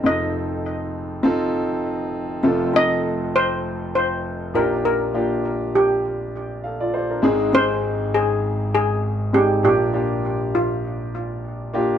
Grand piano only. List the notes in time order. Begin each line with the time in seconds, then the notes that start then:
Already playing: C4 D#4 F4 G#4 A4
0.04 F1 F2 C4 D#4 F4 A4
1.23 C4 D#4 F4 A4
2.43 F1 F2 A3 C4 F4 A4
2.73 A3 C4 F4 A4
4.54 A#1 A#2 A#3 D4 F4 G4
5.14 A#3 D4 F4 G4
6.64 A4 F5
6.80 F4 D5
6.94 C5
7.10 D4 A#4
7.22 G#1 G#2 G#3 C4 D#4 G#4
7.53 G#3 C4 D#4 G#4
9.33 G#3 C4 D#4 G#4
9.63 A#1 A#2 A#3 D4 F4 G4
9.93 A#3 D4 F4 G4
11.73 A#3 D4 F4 G4